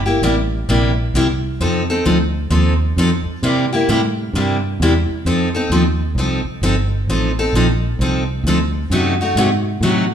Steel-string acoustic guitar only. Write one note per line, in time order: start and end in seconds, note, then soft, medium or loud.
0.06 0.22 A#3 soft
0.06 0.22 E4 medium
0.06 0.21 G4 soft
0.23 0.34 C3 medium
0.23 0.34 G3 medium
0.23 0.34 A#3 medium
0.23 0.34 E4 medium
0.23 0.35 G4 medium
0.69 0.90 C3 medium
0.69 0.90 G3 medium
0.69 0.91 A#3 medium
0.69 0.91 E4 medium
0.69 0.91 G4 medium
1.15 1.26 C3 medium
1.15 1.26 G3 medium
1.15 1.26 A#3 medium
1.15 1.27 E4 medium
1.15 1.27 G4 medium
1.61 1.82 F3 medium
1.61 1.82 C4 medium
1.61 1.82 D#4 medium
1.61 1.82 A4 medium
1.90 2.05 C4 soft
1.90 2.05 D#4 medium
1.90 2.05 A4 medium
2.05 2.17 F3 medium
2.05 2.17 C4 medium
2.05 2.17 D#4 medium
2.05 2.17 A4 medium
2.50 2.72 F3 medium
2.50 2.73 C4 medium
2.50 2.73 D#4 medium
2.50 2.73 A4 medium
2.98 3.09 F3 medium
2.98 3.09 C4 medium
2.98 3.09 D#4 medium
2.98 3.09 A4 medium
3.43 3.64 C3 medium
3.43 3.65 G3 medium
3.43 3.65 A#3 medium
3.43 3.65 E4 medium
3.43 3.65 G4 medium
3.73 3.88 A#3 soft
3.73 3.88 E4 soft
3.73 3.88 G4 medium
3.89 4.00 C3 medium
3.89 4.00 G3 medium
3.89 4.00 A#3 medium
3.89 4.00 E4 medium
3.89 4.00 G4 medium
4.35 4.56 C3 medium
4.35 4.56 G3 medium
4.35 4.56 A#3 medium
4.35 4.57 E4 medium
4.35 4.57 G4 medium
4.82 4.92 C3 medium
4.82 4.92 G3 medium
4.82 4.92 A#3 medium
4.82 4.92 E4 medium
4.82 4.93 G4 medium
5.26 5.47 F3 medium
5.26 5.47 C4 medium
5.26 5.48 D#4 medium
5.26 5.48 A4 medium
5.55 5.71 C4 soft
5.55 5.71 D#4 medium
5.55 5.70 A4 medium
5.72 5.83 F3 medium
5.72 5.83 C4 medium
5.72 5.83 D#4 medium
5.72 5.83 A4 medium
6.18 6.39 F3 medium
6.18 6.39 C4 medium
6.18 6.39 D#4 medium
6.18 6.40 A4 medium
6.63 6.74 F3 medium
6.63 6.74 C4 medium
6.63 6.74 D#4 medium
6.63 6.74 A4 medium
7.10 7.30 F3 medium
7.10 7.30 C4 medium
7.10 7.31 D#4 medium
7.10 7.31 A4 medium
7.39 7.54 C4 soft
7.39 7.54 D#4 medium
7.39 7.54 A4 medium
7.55 7.66 F3 medium
7.55 7.66 C4 medium
7.55 7.66 D#4 medium
7.55 7.66 A4 medium
8.01 8.22 F3 medium
8.01 8.22 C4 medium
8.01 8.22 D#4 medium
8.01 8.22 A4 medium
8.47 8.57 F3 medium
8.47 8.58 C4 medium
8.47 8.58 D#4 medium
8.47 8.58 A4 medium
8.91 9.13 C3 medium
8.91 9.13 F#3 medium
8.91 9.13 A3 medium
8.91 9.13 D#4 medium
8.91 9.13 F#4 medium
9.21 9.37 A3 soft
9.21 9.37 D#4 soft
9.21 9.36 F#4 medium
9.37 9.48 C3 medium
9.37 9.48 F#3 medium
9.37 9.49 A3 medium
9.37 9.49 D#4 medium
9.37 9.49 F#4 medium
9.83 10.04 C3 medium
9.83 10.04 F#3 medium
9.83 10.04 A3 medium
9.83 10.04 D#4 medium
9.83 10.04 F#4 medium